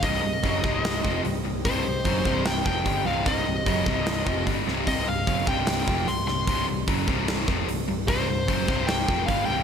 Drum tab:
HH |o-o-o-o-|o-o-o-o-|o-o-o-o-|o-o-o-o-|
SD |----o---|----o---|----o--o|----o--o|
BD |o-oo-o--|o-oo-oo-|o-oo-oo-|o-oo-o--|

HH |o-o-o-o-|o-o-o-o-|
SD |----o---|----o---|
BD |o-oo-o--|o-oo-oo-|